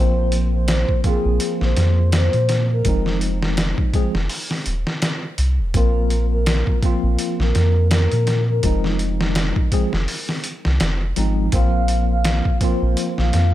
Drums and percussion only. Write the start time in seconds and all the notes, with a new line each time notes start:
0.32 closed hi-hat
0.68 snare, closed hi-hat
0.89 kick
1.04 kick, closed hi-hat
1.40 closed hi-hat
1.61 snare
1.77 snare, closed hi-hat
2.12 snare, closed hi-hat
2.33 closed hi-hat
2.49 snare, closed hi-hat
2.85 kick, closed hi-hat
3.06 snare
3.21 closed hi-hat
3.43 snare
3.57 snare, closed hi-hat
3.78 kick
3.94 kick, closed hi-hat
4.15 snare
4.29 open hi-hat
4.51 snare
4.66 closed hi-hat
4.87 snare
5.02 snare, closed hi-hat
5.38 closed hi-hat
5.74 kick, closed hi-hat
6.10 closed hi-hat
6.46 snare, closed hi-hat
6.67 kick
6.83 kick, closed hi-hat
7.19 closed hi-hat
7.40 snare
7.55 snare, closed hi-hat
7.91 snare, closed hi-hat
8.12 closed hi-hat
8.27 snare, closed hi-hat
8.63 kick, closed hi-hat
8.84 snare
8.99 closed hi-hat
9.21 snare
9.35 snare, closed hi-hat
9.56 kick
9.72 kick, closed hi-hat
9.93 snare
10.08 open hi-hat
10.29 snare
10.44 closed hi-hat
10.65 snare
10.80 snare, closed hi-hat
11.16 closed hi-hat
11.52 kick, closed hi-hat
11.88 closed hi-hat
12.24 snare, closed hi-hat
12.45 kick
12.61 kick, closed hi-hat
12.97 closed hi-hat
13.18 snare
13.33 snare, closed hi-hat